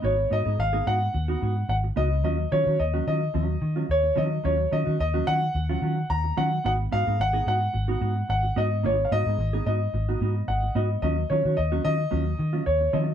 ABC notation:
X:1
M:4/4
L:1/16
Q:1/4=109
K:Ebm
V:1 name="Grand piano"
d2 e2 f2 g6 g2 e2 | e2 d2 e2 e6 d2 e2 | d2 e2 e2 g6 b2 g2 | g2 f2 g2 g6 g2 e2 |
d3/2 f/2 e4 e6 g2 e2 | e2 d2 e2 e6 d2 e2 |]
V:2 name="Clean electric guitar"
[CEG] z [CEG] [CEA] z [CEA] [CEG] z2 [CEG] [CEG] z3 [CEG] z | [G,DF] z [G,DF] [G,DG] z [G,DG] [G,DF] z [G,DF] z2 [G,DF] z2 [G,DF] z | [G,DF] z [G,DF] [G,DG] z [G,DG] [G,DF] z2 [G,DF] [G,DF] z3 [G,DF] z | [CEG] z [CEG] [CEA] z [CEA] [CEG] z2 [CEG] [CEG] z3 [CEG] z |
[CEG] z [CEG] [CEA] z [CEA] [CEG] z2 [CEG] [CEG] z3 [CEG] z | [G,DF] z [G,DF] [G,DG] z [G,DG] [G,DF] z [G,DF] z2 [G,DF] z2 [G,DF] z |]
V:3 name="Fingered electric bass" clef=bass
A,,,2 A,, A,, A,,,2 A,,2 E,,2 A,,2 A,,,2 D,,2 | E,,2 E, E, E,,2 E,2 E,,2 E,2 E,,2 E,2 | E,,2 E, E, E,,2 E,2 E,,2 E,2 E,,2 E,2 | A,,,2 A,, A,, A,,,2 A,,2 A,,,2 A,,2 A,,,2 A,,2 |
A,,,2 A,, A,, A,,,2 A,,2 A,,,2 A,,2 A,,,2 A,,2 | E,,2 E, E, E,,2 E,2 E,,2 E,2 E,,2 E,2 |]